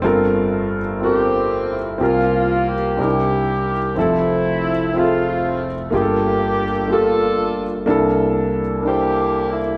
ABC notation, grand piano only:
X:1
M:6/8
L:1/8
Q:3/8=61
K:Gdor
V:1 name="Grand piano"
[CFAB]2 z [CFAB]2 z | [CFGB]2 z [CD_E=EB]2 z | [F,CEA]2 z [CF_A=Ae]2 z | [B,FG_A=A]2 z [B,FGA]2 z |
[B,DEA]2 z [B,DEc]2 z |]
V:2 name="Grand piano" clef=bass
[G,,,G,,]6 | [C,,C,]3 [C,,C,]3 | [F,,,F,,]6 | [G,,,G,,]6 |
[C,,C,]6 |]